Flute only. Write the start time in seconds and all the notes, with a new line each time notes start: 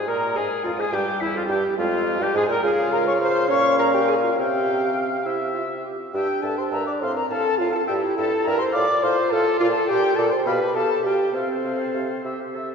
0.07 A#5
0.35 G#5
0.63 F5
0.77 G#5
0.91 G5
1.20 E5
1.35 F5
1.50 G5
1.78 F5
2.21 G5
2.36 G#5
2.50 A#5
2.64 G#5
2.92 A#5
3.06 C#6
3.21 C6
3.50 C#6
3.78 A#5
3.93 G5
4.08 G#5
4.22 F5
4.38 G5
6.13 G5
6.42 A5
6.57 C6
6.71 A#5
6.86 D6
7.01 C6
7.15 A#5
7.29 A5
7.59 F5
7.73 A5
7.87 G5
8.17 A5
8.44 A#5
8.58 C6
8.72 D6
9.01 C6
9.29 A5
9.57 F5
9.72 A5
9.86 G5
10.15 A5
10.30 C6
10.45 B5
10.74 A5
11.04 G5
11.34 C5